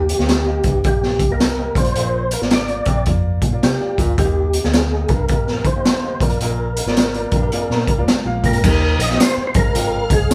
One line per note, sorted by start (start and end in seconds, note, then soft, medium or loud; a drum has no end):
0.00 0.12 D#2 loud
0.00 0.61 D#4 medium
0.00 0.85 G4 medium
0.00 0.10 D#5 medium
0.09 closed hi-hat medium
0.18 0.58 D2 medium
0.18 0.35 A#3 medium
0.18 0.36 G4 medium
0.18 0.36 D#5 medium
0.18 snare soft
0.28 snare loud
0.28 closed hi-hat medium
0.46 0.75 A#3 medium
0.46 0.75 G4 medium
0.46 0.75 D#5 medium
0.63 0.81 C2 medium
0.63 0.80 G2 medium
0.63 kick medium
0.63 closed hi-hat medium
0.84 1.19 A#1 medium
0.84 1.20 A#3 medium
0.84 1.21 G4 medium
0.84 1.32 G4 medium
0.84 1.21 D#5 medium
0.84 kick medium
0.84 closed hi-hat medium
1.03 snare soft
1.19 1.67 C2 medium
1.19 kick medium
1.19 closed hi-hat medium
1.30 1.47 A#3 medium
1.30 1.47 G4 medium
1.30 1.78 A#4 medium
1.30 1.47 D#5 medium
1.40 snare loud
1.40 closed hi-hat medium
1.58 1.74 A#3 medium
1.58 1.76 G4 medium
1.58 1.76 D#5 medium
1.75 1.93 A#1 medium
1.75 2.48 A#2 medium
1.75 2.31 A#3 medium
1.75 2.31 F4 medium
1.75 2.34 C5 loud
1.75 2.32 D5 medium
1.75 kick medium
1.75 closed hi-hat medium
1.84 closed hi-hat soft
1.95 2.34 A#1 loud
1.95 2.24 A#2 medium
1.95 closed hi-hat medium
2.31 2.42 A#4 loud
2.31 closed hi-hat medium
2.41 2.80 G#1 medium
2.41 2.58 A#3 medium
2.41 2.58 F4 medium
2.41 2.59 D5 medium
2.41 snare soft
2.50 3.04 D5 medium
2.50 snare loud
2.50 closed hi-hat medium
2.68 2.97 A#3 medium
2.68 2.98 F4 medium
2.68 2.98 D5 medium
2.68 closed hi-hat soft
2.85 3.04 A#1 medium
2.85 3.03 C3 medium
2.85 kick medium
2.85 closed hi-hat medium
3.06 3.37 F2 medium
3.06 3.43 A#3 medium
3.06 3.43 F4 medium
3.06 3.44 D5 medium
3.06 kick medium
3.06 closed hi-hat medium
3.42 3.59 A#2 loud
3.42 kick medium
3.42 closed hi-hat medium
3.52 3.69 A#3 medium
3.52 3.69 F4 medium
3.52 3.70 D5 medium
3.63 3.78 C3 medium
3.63 4.00 G4 medium
3.63 snare loud
3.63 closed hi-hat medium
3.80 4.09 A#3 medium
3.80 4.09 F4 medium
3.80 4.09 D5 medium
3.98 4.07 C#2 medium
3.98 4.14 A#2 medium
3.98 4.19 F4 medium
3.98 kick medium
3.98 closed hi-hat medium
4.08 4.17 D2 medium
4.18 4.46 D#2 medium
4.18 4.57 D#2 loud
4.18 4.54 A#3 medium
4.18 5.06 D#4 medium
4.18 4.65 G4 loud
4.18 4.55 G4 medium
4.18 4.55 D#5 medium
4.18 kick medium
4.18 closed hi-hat medium
4.53 closed hi-hat medium
4.64 5.03 D2 medium
4.64 4.81 A#3 medium
4.64 4.81 G4 medium
4.64 5.11 G#4 medium
4.64 4.81 D#5 medium
4.64 snare soft
4.73 snare loud
4.73 closed hi-hat medium
4.91 5.20 A#3 medium
4.91 5.20 G4 medium
4.91 5.21 D#5 medium
5.08 5.30 C2 medium
5.08 5.25 G2 medium
5.08 5.67 A#4 medium
5.08 kick medium
5.08 closed hi-hat medium
5.28 5.60 A#1 medium
5.28 5.66 A#3 medium
5.28 5.66 G4 medium
5.28 5.66 D#5 medium
5.28 kick medium
5.28 closed hi-hat medium
5.47 snare soft
5.64 6.12 D#3 loud
5.64 6.23 C5 loud
5.64 kick medium
5.64 closed hi-hat medium
5.75 5.92 A#3 medium
5.75 5.92 G4 medium
5.75 5.93 D#5 medium
5.85 snare loud
5.85 closed hi-hat medium
6.03 6.19 A#3 medium
6.03 6.21 G4 medium
6.03 6.21 D#5 medium
6.20 6.38 A#1 loud
6.20 6.93 A#2 medium
6.20 6.76 A#3 medium
6.20 6.77 F4 medium
6.20 8.05 A#4 medium
6.20 6.77 D5 medium
6.20 kick medium
6.20 closed hi-hat medium
6.29 closed hi-hat soft
6.40 6.80 A#1 loud
6.40 6.69 A#2 medium
6.40 closed hi-hat medium
6.76 closed hi-hat medium
6.86 7.25 G#1 medium
6.86 7.03 A#3 medium
6.86 7.04 F4 medium
6.86 7.04 D5 loud
6.86 snare soft
6.97 snare loud
6.97 closed hi-hat medium
7.14 7.43 A#3 medium
7.14 7.43 F4 medium
7.14 7.44 D5 medium
7.14 closed hi-hat soft
7.31 7.49 A#1 medium
7.31 7.48 G2 medium
7.31 kick medium
7.31 closed hi-hat medium
7.42 7.52 A#3 medium
7.42 7.52 G4 medium
7.52 7.89 A#3 medium
7.52 7.70 C4 medium
7.52 7.89 F4 medium
7.52 7.69 G#4 medium
7.52 7.89 D5 medium
7.52 closed hi-hat medium
7.70 7.85 A#2 medium
7.70 7.88 D4 medium
7.70 7.87 A#4 medium
7.70 snare soft
7.87 7.96 A#1 loud
7.87 7.98 A#3 medium
7.87 7.98 G4 medium
7.87 kick medium
7.87 closed hi-hat medium
7.98 8.07 C2 medium
7.98 8.61 G#3 medium
7.98 8.15 A#3 medium
7.98 8.60 F4 medium
7.98 8.15 F4 medium
7.98 8.15 D5 medium
8.08 muted fingered electric bass stroke soft
8.08 snare loud
8.08 closed hi-hat medium
8.25 8.41 A#1 medium
8.25 8.54 A#3 medium
8.25 8.54 F4 medium
8.25 8.55 F5 loud
8.43 8.59 F2 medium
8.43 8.61 A#2 loud
8.43 9.02 A#4 loud
8.43 kick medium
8.43 closed hi-hat medium
8.53 closed hi-hat soft
8.63 9.06 D#2 medium
8.63 8.94 D#2 loud
8.63 9.51 D#3 medium
8.63 9.00 A#3 medium
8.63 9.00 D#4 medium
8.63 9.00 G4 medium
8.63 9.19 D#5 loud
8.63 9.01 D#5 medium
8.63 9.19 D#6 loud
8.63 kick loud
8.63 crash loud
8.63 tambourine medium
8.99 9.16 A#1 medium
8.99 9.21 D#5 loud
8.99 closed hi-hat medium
9.09 9.51 A#3 medium
9.09 9.51 D#4 medium
9.09 9.51 G4 medium
9.09 9.51 D#5 loud
9.09 snare soft
9.20 9.46 C5 loud
9.20 snare loud
9.20 closed hi-hat medium
9.20 tambourine loud
9.37 muted fingered electric bass stroke soft
9.47 9.55 C5 medium
9.54 9.72 G#1 loud
9.54 10.27 G#2 medium
9.54 9.96 C4 medium
9.54 9.97 D#4 medium
9.54 9.97 G#4 medium
9.54 10.13 A#4 medium
9.54 9.97 D#5 medium
9.54 10.34 F5 medium
9.54 10.34 F6 loud
9.54 kick loud
9.54 closed hi-hat medium
9.74 10.05 G#1 loud
9.74 10.03 F2 medium
9.74 closed hi-hat medium
9.74 tambourine medium
10.10 10.28 C2 medium
10.10 10.24 C4 medium
10.10 10.24 D#4 medium
10.10 10.24 G#4 medium
10.10 10.34 G#4 loud
10.10 10.25 D#5 medium
10.10 kick loud
10.10 closed hi-hat medium
10.30 10.34 C#2 loud
10.30 10.34 C4 medium
10.30 10.34 D#4 medium
10.30 snare loud
10.30 closed hi-hat loud
10.30 tambourine loud